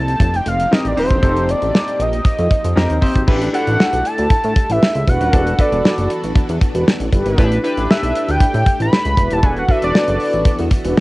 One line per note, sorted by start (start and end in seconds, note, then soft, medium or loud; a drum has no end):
0.00 0.15 C2 medium
0.00 3.24 F3 medium
0.00 3.24 A#3 medium
0.00 3.24 C4 medium
0.00 3.24 D#4 medium
0.00 3.24 G4 medium
0.00 0.37 A5 loud
0.08 closed hi-hat medium
0.20 0.41 F1 loud
0.20 kick loud
0.20 closed hi-hat medium
0.34 0.49 G5 loud
0.34 closed hi-hat soft
0.46 0.67 F1 loud
0.46 0.75 F5 loud
0.46 closed hi-hat medium
0.60 closed hi-hat medium
0.71 0.92 C4 medium
0.71 0.92 D#4 medium
0.71 0.92 G4 medium
0.71 0.92 A#4 medium
0.71 0.89 D#5 medium
0.71 snare loud
0.85 0.95 A1 medium
0.85 0.98 D5 medium
0.85 closed hi-hat medium
0.96 1.08 D#1 medium
0.96 1.17 C4 medium
0.96 1.17 D#4 medium
0.96 1.17 G4 medium
0.96 1.18 C5 medium
0.96 1.52 C5 medium
0.96 open hi-hat medium
1.11 1.20 E1 loud
1.11 kick medium
1.11 closed hi-hat soft
1.22 1.55 F1 loud
1.22 2.04 C4 medium
1.22 2.04 D#4 medium
1.22 2.04 G4 medium
1.22 2.04 A4 medium
1.22 kick loud
1.22 closed hi-hat medium
1.37 closed hi-hat soft
1.49 2.03 D5 loud
1.49 closed hi-hat medium
1.62 1.72 A1 medium
1.62 closed hi-hat soft
1.75 snare loud
1.88 closed hi-hat medium
2.00 2.20 A#1 medium
2.00 3.03 D#5 medium
2.00 closed hi-hat medium
2.13 closed hi-hat soft
2.25 kick loud
2.25 closed hi-hat medium
2.39 2.49 F2 loud
2.39 closed hi-hat soft
2.51 kick loud
2.51 closed hi-hat medium
2.64 2.74 F2 loud
2.64 closed hi-hat medium
2.76 2.88 F2 loud
2.76 2.97 C4 medium
2.76 2.97 D#4 medium
2.76 2.97 G4 medium
2.76 2.97 A#4 loud
2.76 snare loud
2.90 3.00 D#2 medium
2.90 closed hi-hat soft
3.01 3.22 C4 medium
3.01 3.22 D#4 medium
3.01 3.23 G4 medium
3.01 3.23 C5 loud
3.01 kick medium
3.01 open hi-hat medium
3.16 3.25 G#1 medium
3.16 kick medium
3.16 closed hi-hat soft
3.27 3.49 A1 loud
3.27 5.31 A3 medium
3.27 3.48 D4 medium
3.27 11.00 D4 medium
3.27 3.48 E4 medium
3.27 5.31 G4 medium
3.27 3.48 G4 medium
3.27 3.48 B4 loud
3.27 kick loud
3.27 crash loud
3.42 closed hi-hat medium
3.53 4.34 D4 medium
3.53 4.34 E4 medium
3.53 4.35 G4 medium
3.53 4.35 A4 medium
3.53 4.07 F#5 loud
3.53 closed hi-hat medium
3.67 3.77 A1 loud
3.67 closed hi-hat medium
3.80 snare loud
3.93 4.03 B1 medium
3.93 closed hi-hat medium
4.05 4.73 A5 loud
4.05 closed hi-hat medium
4.18 4.28 D2 loud
4.18 closed hi-hat medium
4.30 4.36 A2 soft
4.30 kick loud
4.30 closed hi-hat medium
4.44 4.54 A2 loud
4.44 closed hi-hat medium
4.56 kick loud
4.56 closed hi-hat medium
4.69 4.79 A1 medium
4.69 4.80 E4 loud
4.69 4.80 G4 loud
4.69 4.80 B4 loud
4.69 5.11 E5 loud
4.69 closed hi-hat medium
4.83 snare loud
4.95 5.05 C#2 medium
4.95 closed hi-hat medium
5.07 5.18 E1 medium
5.07 5.41 D4 medium
5.07 5.41 F#4 medium
5.07 5.41 B4 loud
5.07 5.62 F#5 loud
5.07 kick medium
5.07 closed hi-hat medium
5.21 5.31 D#1 loud
5.21 closed hi-hat medium
5.33 5.54 E1 loud
5.33 7.36 E3 medium
5.33 7.36 B3 medium
5.33 5.53 D4 medium
5.33 5.53 F#4 medium
5.33 7.36 F#4 medium
5.33 5.54 A4 medium
5.33 7.36 A4 medium
5.33 5.54 B4 medium
5.33 kick loud
5.33 closed hi-hat medium
5.47 closed hi-hat medium
5.58 6.40 D4 medium
5.58 6.40 F#4 medium
5.58 6.40 A4 medium
5.58 6.40 B4 medium
5.58 6.11 D5 medium
5.58 kick loud
5.58 closed hi-hat medium
5.72 5.82 E1 medium
5.72 closed hi-hat soft
5.85 snare loud
5.98 6.08 F#1 loud
5.98 closed hi-hat medium
6.10 closed hi-hat medium
6.23 6.33 A1 medium
6.23 closed hi-hat soft
6.35 6.41 E2 soft
6.35 kick loud
6.35 closed hi-hat medium
6.49 6.59 E2 loud
6.49 closed hi-hat medium
6.61 kick loud
6.61 closed hi-hat loud
6.75 6.84 E1 loud
6.75 6.85 D4 loud
6.75 6.85 F#4 loud
6.75 6.85 B4 loud
6.75 closed hi-hat medium
6.88 snare loud
7.00 7.10 A1 medium
7.00 closed hi-hat medium
7.12 7.23 G1 medium
7.12 7.46 E4 medium
7.12 7.46 G4 loud
7.12 7.46 B4 loud
7.12 kick medium
7.12 closed hi-hat medium
7.26 7.36 G#1 medium
7.26 closed hi-hat medium
7.38 7.59 A1 loud
7.38 9.41 A3 medium
7.38 7.58 D4 loud
7.38 7.59 E4 medium
7.38 9.41 G4 medium
7.38 7.59 G4 medium
7.38 7.59 B4 loud
7.38 kick loud
7.38 closed hi-hat medium
7.52 closed hi-hat medium
7.63 8.45 D4 medium
7.63 8.45 E4 medium
7.63 8.45 G4 medium
7.63 8.45 B4 loud
7.63 closed hi-hat medium
7.77 7.87 A1 medium
7.77 closed hi-hat medium
7.91 8.32 E5 medium
7.91 snare loud
8.03 8.13 B1 medium
8.03 closed hi-hat medium
8.15 closed hi-hat medium
8.29 8.38 D2 medium
8.29 8.81 G5 loud
8.29 closed hi-hat medium
8.40 8.46 A2 medium
8.40 kick loud
8.40 closed hi-hat medium
8.54 8.64 A2 loud
8.54 closed hi-hat medium
8.66 kick loud
8.66 closed hi-hat medium
8.80 8.90 A1 medium
8.80 8.90 E4 loud
8.80 8.90 G4 loud
8.80 8.90 B4 loud
8.80 9.34 B5 loud
8.80 closed hi-hat medium
8.93 snare loud
9.05 9.15 C#2 medium
9.05 closed hi-hat medium
9.17 9.28 E1 loud
9.17 9.39 E4 medium
9.17 9.39 G4 medium
9.17 9.39 B4 loud
9.17 kick medium
9.17 closed hi-hat medium
9.31 9.41 D#1 loud
9.31 9.47 A5 loud
9.31 closed hi-hat medium
9.43 9.64 E1 loud
9.43 11.00 E3 medium
9.43 11.00 B3 medium
9.43 9.63 D4 medium
9.43 9.64 F#4 medium
9.43 11.00 F#4 medium
9.43 9.64 A4 medium
9.43 11.00 A4 medium
9.43 9.64 B4 medium
9.43 9.58 G#5 loud
9.43 kick loud
9.43 closed hi-hat medium
9.57 9.72 F#5 medium
9.57 closed hi-hat medium
9.68 10.50 D4 medium
9.68 10.50 F#4 medium
9.68 10.50 A4 medium
9.68 10.50 B4 medium
9.68 9.83 E5 loud
9.68 kick loud
9.68 closed hi-hat medium
9.82 9.92 E1 loud
9.82 10.56 D5 medium
9.82 closed hi-hat medium
9.95 snare loud
10.08 10.18 F#1 loud
10.08 closed hi-hat medium
10.20 open hi-hat medium
10.33 10.44 A1 medium
10.33 closed hi-hat medium
10.45 10.51 E2 soft
10.45 kick loud
10.45 closed hi-hat medium
10.59 10.69 E2 loud
10.59 closed hi-hat medium
10.71 kick loud
10.71 closed hi-hat medium
10.85 10.95 E1 medium
10.85 10.95 D4 loud
10.85 10.95 F#4 loud
10.85 10.95 B4 loud
10.85 closed hi-hat medium